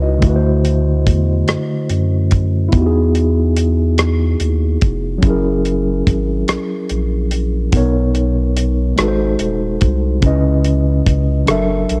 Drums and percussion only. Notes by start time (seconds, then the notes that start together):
0.22 kick, closed hi-hat
0.65 closed hi-hat
1.07 kick, closed hi-hat
1.48 cross-stick, closed hi-hat
1.89 closed hi-hat
2.31 kick, closed hi-hat
2.72 kick, closed hi-hat
3.15 closed hi-hat
3.57 closed hi-hat
3.98 cross-stick, closed hi-hat
4.40 closed hi-hat
4.81 kick, closed hi-hat
5.23 kick, closed hi-hat
5.65 closed hi-hat
6.07 kick, closed hi-hat
6.48 cross-stick, closed hi-hat
6.89 closed hi-hat
7.31 closed hi-hat
7.72 kick, closed hi-hat
8.15 closed hi-hat
8.57 closed hi-hat
8.98 cross-stick, closed hi-hat
9.39 closed hi-hat
9.81 kick, closed hi-hat
10.22 kick, closed hi-hat
10.64 closed hi-hat
11.06 kick, closed hi-hat
11.47 cross-stick, closed hi-hat
11.89 closed hi-hat